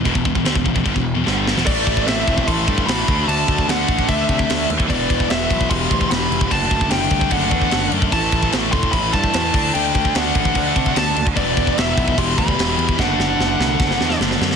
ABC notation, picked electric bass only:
X:1
M:4/4
L:1/16
Q:1/4=148
K:Dmix
V:1 name="Picked electric bass" clef=bass
E,,, E,,, E,,, E,,, D,, E,,, E,,, E,,, G,,, E,,,2 E,,, G,,,3 E,,, | A,,,2 A,,,2 A,,,2 E,,,2 A,,,2 G,,2 A,,,2 D,,2 | D,,2 D,,2 D,,2 A,,,2 D,,2 C,2 D,,2 ^D,,2 | E,,,2 E,,,2 E,,,2 B,,,2 E,,,2 D,,2 E,,,2 =F,,,2 |
F,,,2 F,,,2 F,,,2 C,,2 F,,,2 E,,2 F,,,2 F,,2 | A,,,2 A,,,2 A,,,2 E,,,2 A,,,2 G,,2 E,,2 D,,2 | D,,2 D,,2 D,,2 A,,,2 D,,2 C,2 D,,2 D,,2 | E,,,2 E,,,2 E,,,2 B,,,2 E,,,2 D,,2 E,,,2 E,,2 |
F,,,2 F,,,2 F,,,2 C,,2 F,,,2 E,,2 F,,,2 F,,2 |]